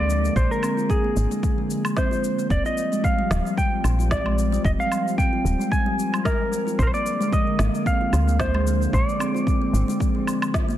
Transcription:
Already playing: D2 D3 G#3 A#3 D5
0.09 F3, cabasa
0.24 G#3, cabasa
0.36 A#1 C5, kick, cabasa
0.51 A#4, cabasa
0.63 C4, cabasa, low woodblock
0.77 F4, cabasa
0.90 G#4, kick, cabasa
1.04 A#3
1.17 G#1, cabasa
1.31 G#3, cabasa
1.43 F3, kick, cabasa
1.58 G#3
1.70 cabasa
1.85 cabasa, low woodblock
1.96 C4 C5, kick, snare, cabasa
2.11 F4, cabasa
2.24 cabasa
2.38 A#3, cabasa
2.50 F1 F3 G3 C4 D5, kick, cabasa
2.65 F4 D#5, cabasa
2.78 cabasa
2.92 G#3, cabasa
3.04 F5, kick, cabasa
3.19 G3
3.31 D1 F3, snare, cabasa
3.45 G3, cabasa
3.58 G5, kick, cabasa
3.84 A#1 C4, cabasa, low woodblock
3.99 F4, cabasa
4.11 D5, kick, snare, cabasa
4.26 G#3, low woodblock
4.38 cabasa
4.52 G3, cabasa
4.64 F1 F3 D#5, kick, cabasa
4.79 G3 F5, cabasa
4.92 cabasa, low woodblock
5.08 cabasa
5.18 C4 G5, kick, cabasa
5.33 F4
5.45 D1, cabasa
5.60 G#3, cabasa
5.72 G#5, kick, cabasa
5.86 G3
5.98 F3, cabasa
6.13 G3, cabasa, low woodblock
6.25 A#4, kick, snare, cabasa
6.52 C4, cabasa
6.67 F4, cabasa
6.78 A#1 D3 G#3 A#3 C5, kick, cabasa
6.83 A#4
6.87 C5
6.94 A#3 D5, cabasa
7.06 cabasa
7.21 G#3, cabasa
7.32 F3 D#5, kick, cabasa
7.47 G#3
7.59 G#1, snare, cabasa
7.75 cabasa
7.86 C4 F5, kick, cabasa
8.01 F4
8.13 D2, cabasa, low woodblock
8.28 A#3, cabasa
8.40 C5, kick, snare, cabasa
8.54 G#3, low woodblock
8.67 F3, cabasa
8.81 G#3, cabasa
8.93 A#1 C4 D5, kick, cabasa
9.09 cabasa
9.20 C4, cabasa, low woodblock
9.35 F4, cabasa
9.47 kick, cabasa
9.62 A#3
9.73 G#1, cabasa
9.88 G#3, cabasa
10.00 F3, kick, cabasa
10.15 G#3
10.27 cabasa, low woodblock
10.42 cabasa, low woodblock
10.54 F4, kick, snare, cabasa
10.69 A#3, cabasa

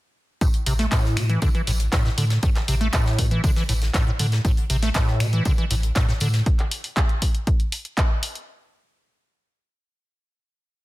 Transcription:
0.41 A2, kick, closed hi-hat, tambourine
0.54 closed hi-hat
0.66 A1 C3, open hi-hat, tambourine
0.79 A3, snare, open hi-hat
0.91 A2, kick, snare, clap, closed hi-hat, tambourine
1.05 snare
1.17 A2 B2, finger snap, snare, open hi-hat, tambourine
1.29 E3, closed hi-hat
1.42 D3, kick, closed hi-hat, tambourine
1.55 E3, closed hi-hat
1.67 A1 A2, open hi-hat, tambourine
1.79 closed hi-hat
1.92 A2, kick, snare, clap, closed hi-hat, tambourine
2.05 A2, snare
2.18 A2 D3, open hi-hat, tambourine
2.30 snare, closed hi-hat
2.43 A2, kick, closed hi-hat, tambourine
2.55 snare, clap, closed hi-hat
2.68 A1 C3, open hi-hat, tambourine
2.81 A3, closed hi-hat
2.93 A2, kick, snare, clap, closed hi-hat, tambourine
3.06 snare
3.19 A2 B2, kick, open hi-hat, tambourine
3.31 E3, closed hi-hat
3.44 D3, kick, closed hi-hat, tambourine
3.56 E3, snare, closed hi-hat
3.69 A1 A2, open hi-hat, tambourine
3.82 snare, closed hi-hat
3.94 A2, kick, snare, clap, closed hi-hat, tambourine
4.07 A2
4.19 A2 D3, open hi-hat, tambourine
4.32 snare, closed hi-hat
4.45 A2, kick, closed hi-hat, tambourine
4.57 closed hi-hat
4.70 A1 C3, open hi-hat, tambourine
4.83 A3, snare, open hi-hat
4.94 A2, kick, snare, clap, closed hi-hat, tambourine
5.07 snare
5.20 A2 B2, finger snap, snare, open hi-hat, tambourine
5.33 E3, closed hi-hat
5.45 D3, kick, closed hi-hat, tambourine
5.58 E3, closed hi-hat
5.70 A1 A2, open hi-hat, tambourine
5.83 closed hi-hat
5.95 A2, kick, snare, clap, closed hi-hat, tambourine
6.08 A2, snare
6.20 A2 D3, open hi-hat, tambourine
6.34 snare, closed hi-hat
6.46 kick, closed hi-hat
6.59 clap, closed hi-hat
6.71 open hi-hat
6.84 open hi-hat
6.97 kick, clap, closed hi-hat
7.09 closed hi-hat
7.22 kick, open hi-hat
7.35 closed hi-hat
7.47 kick, closed hi-hat
7.60 closed hi-hat
7.72 open hi-hat
7.85 closed hi-hat
7.98 kick, clap, closed hi-hat
8.23 open hi-hat
8.35 closed hi-hat

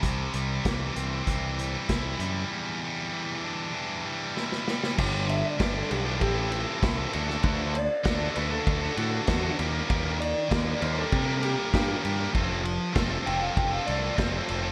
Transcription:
Already playing: E3 G3 E4
0.03 C2 C3, kick, closed hi-hat
0.33 C2 G3, closed hi-hat
0.64 C2 E3, kick, snare, closed hi-hat
0.95 C2 C4, closed hi-hat
1.25 C2 E3, kick, closed hi-hat
1.58 G3, closed hi-hat
1.89 C2 E4, kick, snare, closed hi-hat
2.19 F#2 G3, closed hi-hat
2.50 E2
2.82 G3
3.13 E3
3.44 D4
3.74 E3
4.05 G3
4.36 E4, snare
4.52 snare
4.66 G3, snare
4.84 snare
4.96 G1 G2 D3 G3 B3 D4 G4, kick, crash
5.27 E5, muted distorted electric guitar stroke, ride
5.46 D5
5.57 G1 G2 D3 G3 B3 D4 G4 B4, kick, snare, ride
5.74 G3 B3 D4 G4 A4
5.89 B1 G3 B3 D4 G4, ride
6.05 G3 B3 D4 E4 G4
6.20 A1 A2 E3 C4 E4 G4 A4, kick, ride
6.35 C4 E4 A4
6.50 E3 C4 E4 A4, ride
6.82 C2 A2 E3 C4 E4 A4, kick, snare, ride
6.97 C4 E4 A4
7.12 D2 D3 D4 F#4 A4, ride
7.27 D4 F#4 A4, snare
7.43 D2 D3 D4 F#4 A4, kick, ride
7.74 D5, muted distorted electric guitar stroke, ride
8.04 D2 D3 D4 F#4 A4, kick, snare, ride
8.20 D4 F#4 A4
8.35 D2 D3 D4 F#4 A4 B4, ride
8.51 D4 F#4 A4
8.67 D2, kick, ride
8.81 D4 F#4 A4
8.96 A2 D3 D4 F#4 A4, ride
9.27 E2 D3 D4 F#4 A4, kick, snare, ride
9.43 D4 F#4 A4
9.58 D#2 D#3 G3 A#3 G4 A#4, ride
9.73 G3 G4 A#4
9.89 D#2 D#3 G3 A#3 G4 A#4, kick, ride
10.19 D5, muted distorted electric guitar stroke, ride
10.49 D#2 D#3 G3 A#3 G4 A#4, kick, snare, ride
10.63 G3 G4 A#4
10.79 D#2 G3 A#3 G4 A#4 C5, ride
10.94 G3 G4 A4 A#4
11.12 C3, kick, ride
11.25 G3 G4 A#4
11.39 G3 A#3 G4 A#4, ride
11.71 G2 D#3 G3 A#3 G4 A#4, kick, snare, ride
11.87 G3 G4 A#4
12.01 G2 G3 A#3 G4 A#4, ride
12.16 G3 G4 A#4
12.33 F1 F3 A3 C4 F4 A4, kick, ride
12.64 muted distorted electric guitar stroke, ride
12.94 F1 F3 A3 C4 F4 A4, kick, snare, ride
13.10 C4 F4 A4
13.25 F1 A3 C4 F4 A4 G5, ride
13.40 C4 F4 A4 F5
13.57 F1 G5, kick, ride
13.71 C4 F4 A4 F5
13.85 C2 A3 C4 F4 A4 D5, ride
14.15 F1 F3 A3 C4 F4 A4 C5, kick, ride
14.19 snare
14.31 C4 F4 A4
14.47 F1 A3 C4 F4 A4, ride
14.62 C4 F4 A4

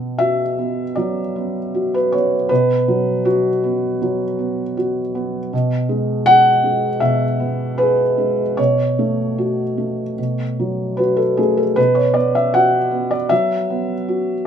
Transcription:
Already playing: B2 B3
0.18 F#4 E5
0.59 B3
0.95 F#3 D5
1.36 B3
1.74 F#4
1.94 B4
2.12 B3 C#5
2.49 B2 B4
2.88 F#3
3.25 F#4
3.64 B3
4.02 F#3
4.39 B3
4.77 F#4
5.15 B3
5.53 B2
5.89 G#3
6.26 G#4 F#5
6.64 G#3
7.00 B2 E5
7.40 B3
7.78 G#4 B4
8.18 G#3
8.57 B2 C#5
8.99 A3
9.38 F#4
9.78 A3
10.18 B2
10.59 F#3
10.97 F#4 B4
11.17 A4
11.37 A3 G#4
11.57 A4
11.76 B2 B4
11.95 C#5
12.14 B3 D5
12.35 E5
12.54 F#4 F#5
12.91 B3
13.11 D5
13.29 F#3 E5
13.70 B3
14.08 F#4

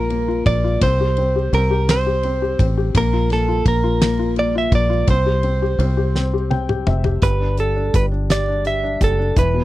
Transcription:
Already playing: A#1 A#3 F4 A#4
0.10 A#3, ride
0.28 F4
0.46 A#1 A#3 D5, kick, ride
0.64 F4
0.81 C2 C4 C5, kick, ride
1.01 G4
1.17 C4, ride
1.36 G4
1.53 C2 C4 A#4, ride
1.71 G4
1.89 C4 C5, snare, ride
2.07 G4
2.23 C4, ride
2.42 G4
2.59 A1 C4, kick, ride
2.78 G4
2.95 A#1 A#3 A#4, kick, ride
3.13 F4
3.30 A#3 A4, snare, ride
3.48 F4
3.65 A#1 A#3 A#4, kick, ride
3.84 F4
4.01 A#3, snare, ride
4.19 F4
4.36 A#3 D5, ride
4.55 F4 E5
4.72 A#1 A#3 D5, kick, ride
4.90 F4
5.07 C2 C4 C5, kick, ride
5.26 G4
5.43 C4, ride
5.62 G4
5.79 C2 C4, ride
5.97 G4
6.16 C4, snare
6.34 G4
6.50 C4 G5, high tom
6.69 G4, mid tom
6.87 F1 C4 E5, mid tom
7.04 G4, floor tom
7.22 G1 G3 B4, kick, closed hi-hat
7.40 D4
7.57 G3 A4, closed hi-hat
7.76 D4
7.94 G1 G3 B4, kick, closed hi-hat
8.12 D4
8.30 G3 D5, snare, closed hi-hat
8.48 D4
8.65 G3 E5, closed hi-hat
8.83 D4
9.01 F#1 G3 A4, kick, closed hi-hat
9.19 D4
9.36 E1 E3 B4, kick, closed hi-hat
9.54 B2

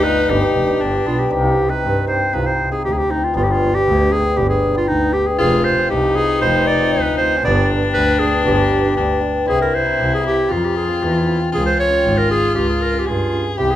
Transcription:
Already playing: D#4
0.03 B3 D4 F4 B4
0.28 G1 B3 D4 G4
0.55 F1
0.66 B3 D4 G4
0.81 G1 D4
1.06 B1 B3 D4 F4 G4
1.19 G4
1.30 C2 C4 D#4 G4
1.68 C4 D#4 G4 B4
1.83 G2
2.07 C4 D#4 G4 C5
2.33 C2 C4 D#4 F4 B4
2.46 C5
2.71 C4 D#4 G4 G#4
2.85 D2 G4
2.93 G#4
2.98 G4
3.09 C4 D#4 G4
3.24 F4
3.34 G1 B3 D4 F4 G4
3.43 G4
3.51 F4
3.73 B3 D4 G4
3.87 D2
4.10 B3 D4 G4 G#4
4.36 G1 B3 D4 G4
4.49 G#4
4.74 B3 D4 F4 G4
4.88 D2 D#4
5.13 B3 D4 G4
5.26 G#4
5.39 F1 C4 F4 G#4
5.64 C5
5.77 C4 F4 G#4
5.90 C2 D#4 G4
6.14 C4 F4 G#4 B4
6.40 F1 C4 F4 B4 C5
6.67 D5
6.80 C4 F4 G#4
6.92 D2 B4
7.17 C4 F4 G4 C5
7.37 C#4
7.44 G1 B3 D4 G4 D5
7.82 B3 D4 G4
7.93 D2 B4
8.19 B3 D4 G4 G#4
8.45 G1 B3 D4 G4
8.53 G#4
8.58 G4
8.85 B3 D4 G4
8.96 D2 D4
9.20 B3 D4 G4
9.46 C2 C4 E4 G4 G#4
9.62 A#4
9.75 C5
9.85 C4 E4 A#4
9.99 C2
10.14 G#4
10.23 C4 E4 G4 A#4
10.49 F2 C4 F4 G#4
10.65 G4
10.77 G#4
10.88 C4 F4 G#4
11.01 E2 E4
11.26 C4 F4 G#4
11.52 C#2 C#4 F4 G#4
11.66 C5
11.80 C#5
11.89 C#4 F4 G4
12.04 G#1
12.18 A#4
12.28 C#4 F4 G#4
12.55 C#2 C#4 F4 G4 G#4
12.69 G#4
12.81 A#4
12.93 C#4 F4 G#4
12.99 G4
13.06 G2 F4 G#4
13.32 C#4 F4 G#4
13.57 C2 C4 E4 G4
13.71 G#4

